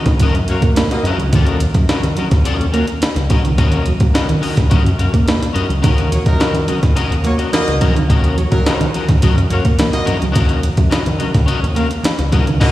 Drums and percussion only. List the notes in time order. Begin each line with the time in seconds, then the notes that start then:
0.06 kick, snare, closed hi-hat
0.20 kick, closed hi-hat
0.35 closed hi-hat
0.48 closed hi-hat
0.62 kick, closed hi-hat
0.76 snare, closed hi-hat
0.91 snare, closed hi-hat
1.05 closed hi-hat
1.20 closed hi-hat
1.33 kick, closed hi-hat
1.47 closed hi-hat
1.60 closed hi-hat
1.74 kick, closed hi-hat
1.89 snare, closed hi-hat
2.03 closed hi-hat
2.17 closed hi-hat
2.31 kick, snare, closed hi-hat
2.45 closed hi-hat
2.61 closed hi-hat
2.74 closed hi-hat
2.87 closed hi-hat
3.02 snare, closed hi-hat
3.16 snare, closed hi-hat
3.30 kick, closed hi-hat
3.45 closed hi-hat
3.58 kick, closed hi-hat
3.72 closed hi-hat
3.86 closed hi-hat
4.00 kick, closed hi-hat
4.15 snare, closed hi-hat
4.29 closed hi-hat
4.43 open hi-hat
4.57 kick, snare, closed hi-hat
4.71 kick, closed hi-hat
4.86 closed hi-hat
4.99 closed hi-hat
5.14 kick, closed hi-hat
5.28 snare, closed hi-hat
5.42 snare, closed hi-hat
5.56 closed hi-hat
5.70 closed hi-hat
5.83 kick, closed hi-hat, muted conga
5.98 closed hi-hat
6.12 closed hi-hat, muted conga
6.26 kick, closed hi-hat
6.40 snare, closed hi-hat, high conga
6.55 closed hi-hat
6.68 closed hi-hat, low conga
6.83 kick, snare, closed hi-hat
6.96 closed hi-hat, low conga
7.12 closed hi-hat
7.24 closed hi-hat, muted conga
7.39 closed hi-hat
7.52 snare, closed hi-hat, high conga
7.68 snare, closed hi-hat
7.81 kick, closed hi-hat, high conga
7.96 closed hi-hat
8.10 kick, closed hi-hat, muted conga
8.24 closed hi-hat
8.38 closed hi-hat, muted conga
8.52 kick, closed hi-hat
8.66 snare, closed hi-hat, high conga
8.81 closed hi-hat
8.94 closed hi-hat, muted conga
9.09 kick, snare, closed hi-hat
9.22 kick, closed hi-hat
9.38 closed hi-hat
9.50 closed hi-hat, muted conga
9.65 kick, closed hi-hat
9.79 snare, closed hi-hat, high conga
9.93 snare, closed hi-hat
10.07 closed hi-hat, high conga
10.22 closed hi-hat
10.35 kick, closed hi-hat, muted conga
10.49 closed hi-hat
10.63 closed hi-hat, muted conga
10.77 kick, closed hi-hat
10.91 snare, closed hi-hat, high conga
11.06 closed hi-hat
11.20 closed hi-hat, muted conga, low conga
11.34 kick, snare, closed hi-hat
11.48 closed hi-hat, low conga
11.64 closed hi-hat
11.75 closed hi-hat, muted conga
11.91 closed hi-hat
12.03 snare, closed hi-hat, high conga
12.19 snare, closed hi-hat
12.32 kick, closed hi-hat, high conga
12.47 closed hi-hat
12.61 kick, snare, crash